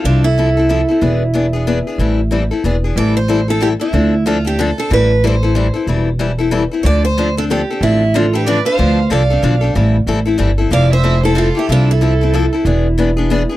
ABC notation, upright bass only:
X:1
M:3/4
L:1/8
Q:"Swing" 1/4=186
K:Am
V:1 name="Upright bass" clef=bass
C,,6 | E,,,6 | A,,,4 E,,,2 | A,,,6 |
D,,6 | A,,,6 | E,,,6 | D,,6 |
A,,,6 | D,,2 C,,2 B,,,2 | A,,,2 A,,,2 G,,,2 | F,,,6 |
C,,6 | E,,,6 |]